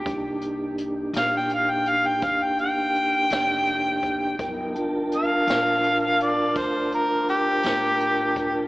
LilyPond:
<<
  \new Staff \with { instrumentName = "Harmonica" } { \time 12/8 \key g \minor \tempo 4. = 55 g'8 r4 f''16 g''16 f''16 g''16 f''16 g''16 f''16 g''16 g''2~ g''8~ | g''8 r8 f''4. d''8 c''8 bes'8 g'2 | }
  \new Staff \with { instrumentName = "Tonewheel organ" } { \time 12/8 \key g \minor <bes d' ees' g'>1. | <fis b ees' bes'>8 <d' f' bes' a''>1~ <d' f' bes' a''>4. | }
  \new Staff \with { instrumentName = "Upright bass" } { \clef bass \time 12/8 \key g \minor c,4. bes,,4. g,,4. f,,4. | g,,4. bes,,4. d,4. a,4. | }
  \new DrumStaff \with { instrumentName = "Drums" } \drummode { \time 12/8 <hh bd>8 hh8 hh8 <hh sn>8 hh8 hh8 <hh bd>8 hh8 hh8 <hh sn>8 hh8 <hh bd>8 | <hh bd>8 hh8 hh8 <hh sn>8 hh8 hh8 <hh bd>8 hh8 hh8 <hh sn>8 hh8 <hh bd>8 | }
>>